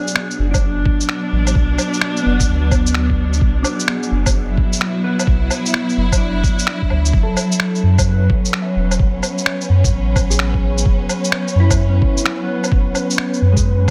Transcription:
Already playing: B2 F#3 D4 G#4
0.07 shaker
0.16 finger snap
0.31 shaker
0.39 F#1
0.51 D4, kick, low woodblock, shaker
0.86 kick
1.01 shaker
1.09 finger snap
1.32 A1
1.47 low woodblock, shaker
1.55 B1, kick
1.78 low woodblock, shaker
1.93 shaker
2.01 finger snap
2.17 shaker
2.22 F#1 B3
2.40 kick, shaker
2.49 D2
2.71 kick, low woodblock, shaker
2.87 shaker
2.94 finger snap
3.10 kick
3.33 shaker
3.41 B1, kick
3.63 D4, low woodblock, shaker
3.68 F#4
3.73 G#4
3.80 shaker
3.88 finger snap
4.03 shaker
4.11 F#1
4.26 kick, low woodblock, shaker
4.47 E4
4.57 kick
4.73 shaker
4.81 finger snap
5.04 B3
5.19 low woodblock, shaker
5.27 B1, kick
5.50 low woodblock, shaker
5.66 shaker
5.74 finger snap
5.89 shaker
5.97 F#1
6.12 kick, low woodblock, shaker
6.17 D4
6.44 kick, shaker
6.59 shaker
6.67 finger snap
6.82 kick
6.90 D2, low woodblock
7.05 shaker
7.13 F#1 B3 B4, kick
7.23 A4
7.37 low woodblock, shaker
7.52 shaker
7.60 finger snap
7.75 shaker
7.83 F#2
7.98 C#4, kick, low woodblock, shaker
8.09 B4
8.30 kick
8.45 shaker
8.53 finger snap
8.62 E5
8.76 E1
8.91 low woodblock, shaker
8.99 F#1, kick
9.23 low woodblock, shaker
9.38 shaker
9.46 finger snap
9.61 shaker
9.69 F#2
9.84 kick, shaker
9.92 A1
10.16 kick, low woodblock, shaker
10.30 G#4, shaker
10.39 finger snap
10.54 kick
10.78 shaker
10.85 F#1, kick
11.09 low woodblock, shaker
11.24 shaker
11.32 finger snap
11.48 shaker
11.55 F#2
11.60 E4
11.71 kick, low woodblock, shaker
11.89 C#4
12.02 kick
12.17 shaker
12.24 C#4, finger snap
12.43 B3
12.64 low woodblock, shaker
12.72 F#1 C#4, kick
12.95 low woodblock, shaker
13.10 shaker
13.18 finger snap
13.34 shaker
13.41 F#2
13.52 G#3
13.57 kick, shaker

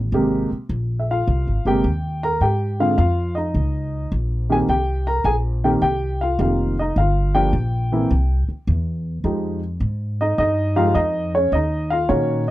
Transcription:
Already playing: A1
0.12 G#1 C3 G#3 A#3 G4
0.51 muted upright bass stroke
0.69 A#1
0.99 E5
1.11 F4 F5
1.27 C2
1.47 G#1
1.65 G1 C3 G#3 A#3 G4 G5
1.84 D#2
2.23 A#4 A#5
2.41 G#2 G4 G5
2.80 D3 G#3 C4 F4 F5
2.98 F2 F4 F5
3.35 D#4 D#5
3.54 C#2
4.12 A#1
4.50 D#3 A#3 C4 G4 G#4 G#5
4.69 C2 G4 G5
5.07 A#4 A#5
5.24 A#1 G#4 G#5
5.64 D#3 A#3 C4 G4 G5
5.81 C2 G4 G5
6.21 F4 F5
6.39 F1 D#3 A#3 C4 F4 G4 F5
6.79 D#4 D#5
6.96 G1 F5
7.00 F4
7.34 F3 A#3 D4 G4 G5
7.53 A#1
7.92 E3 A#3 C4 E4
8.11 C2
8.48 muted upright bass stroke
8.67 E2
9.24 F2 F3 G#3 D#4 G4
9.80 G#2
10.21 D#4 D#5
10.38 G2 D#4 D#5
10.76 F3 G#3 D#4 F4 G4 F5
10.94 F2 D#4 D#5
11.35 C#4 C#5
11.52 D#2 D#4 D#5
11.90 F4 F5
12.09 A#2 D#3 A#3 C#4 F#4 C#5

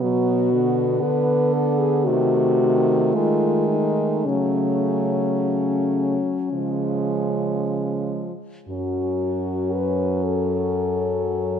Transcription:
Already playing: B3
0.01 B2 F#3 F#4
0.52 D3
1.02 D3 B4
1.53 A4
1.79 G#4
2.05 C3 D#3 A3 F#4
2.61 D#3
3.14 D#3 G#3 F4
3.69 D#4
4.25 C#3 F#3 A3 C#4
6.51 C#3 F3 G#3
8.68 F#2 F#3 C#4 F#4
9.73 B4
10.24 A4

